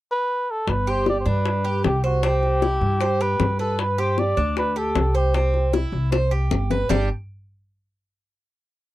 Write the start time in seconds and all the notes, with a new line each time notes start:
0.11 B4
0.51 A4
0.67 G1 B4, high bongo
0.87 G4 C5
1.06 D5, high bongo
1.20 C5
1.26 G2 D4 B4
1.46 high bongo
1.65 G4
1.84 C2 G4, high bongo, low bongo
2.04 F#4 C5
2.23 C4 G4, high bongo
2.43 high bongo
2.62 E4, high bongo
2.81 G2, high bongo
3.01 C5, high bongo
3.21 G4 B4
3.40 G2, high bongo, low bongo
3.59 A4 B4, high bongo
3.79 B4, high bongo
3.98 G4 C5
4.18 D5, high bongo
4.37 D2 D4
4.57 B4, high bongo
4.76 G4 A4
4.95 C2, high bongo, low bongo
5.15 G4 C5
5.34 C4, high bongo
5.54 high bongo
5.73 E4, high bongo
5.92 C2, high bongo
6.12 C5, high bongo
6.31 G4
6.51 G1, low bongo
6.71 B4, low bongo
6.89 G1 G3 D4 G4, low bongo